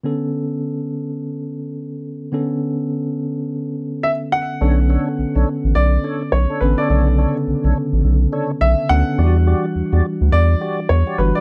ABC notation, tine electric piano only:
X:1
M:4/4
L:1/8
Q:"Swing 16ths" 1/4=105
K:Bm
V:1 name="Tine electric piano"
[D,B,CA]8 | [D,B,CA]8 | [D,B,CA]3 z4 [D,B,CA] | [C,D,B,A]3 z4 [D,B,CA] |
[E,G,DEF]3 z4 [E,G,DF] |]